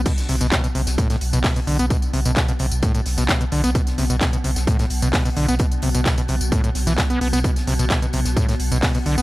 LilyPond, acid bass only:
\new Staff \with { instrumentName = "Acid bass" } { \clef bass \time 4/4 \key a \dorian \tempo 4 = 130 b,16 r16 c16 b,16 b,16 b,16 c16 r16 a,16 a,16 r16 b,16 b,16 b,16 d16 b16 | b,16 r16 c16 b,16 b,16 b,16 c16 r16 a,16 a,16 r16 b,16 b,16 b,16 d16 b16 | b,16 r16 c16 b,16 b,16 b,16 c16 r16 a,16 a,16 r16 b,16 b,16 b,16 d16 b16 | b,16 r16 c16 b,16 b,16 b,16 c16 r16 a,16 a,16 r16 e16 b,16 b16 b16 b16 |
b,16 r16 c16 b,16 b,16 b,16 c16 r16 a,16 a,16 r16 b,16 b,16 b,16 d16 b16 | }